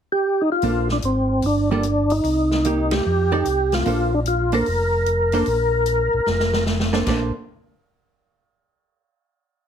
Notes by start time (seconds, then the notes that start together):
0.12 G4
0.41 D#4
0.52 F4
0.62 A#1 A#3 D4 A4 C5, open hi-hat
0.89 D4, snare
1.02 G#1 C4, closed hi-hat
1.42 G1 D4, open hi-hat
1.71 G3 A#3 D4 F4 A4
1.83 closed hi-hat
2.10 D#4, open hi-hat
2.24 C2, open hi-hat
2.51 snare
2.65 A#3 D#4 G4, closed hi-hat
2.91 G4, snare, ride
3.05 F2
3.32 F3 D#4 G4 A4 D5
3.45 C2, closed hi-hat
3.72 F4, snare, open hi-hat
3.86 A#1 A#3 D4 A4 C5, open hi-hat
4.14 D4
4.26 F4, closed hi-hat
4.52 A#3 D4 A4 A#4 C5, open hi-hat
4.66 F1, open hi-hat
5.06 closed hi-hat
5.32 A#3 D4 A4 C5, open hi-hat
5.46 A#1, open hi-hat
5.86 closed hi-hat
6.13 A#1
6.26 F1, snare
6.40 snare
6.53 snare
6.66 snare
6.80 snare
6.93 A#3 D4 A4 C5, snare
7.07 A#1 A#3 D4 A4 C5, kick, snare, crash